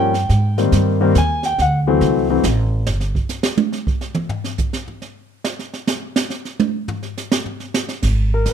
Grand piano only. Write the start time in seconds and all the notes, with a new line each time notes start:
Already playing: F3 G3 A#3 C#4 G5
0.58 D#3 G3 A#3 C4
1.01 D#3 G3 A#3 C4
1.18 G#5
1.46 G5
1.61 F#5
1.87 E3 F#3 A3 C4
2.30 E3 F#3 A3 C4
8.34 A#4
8.49 B4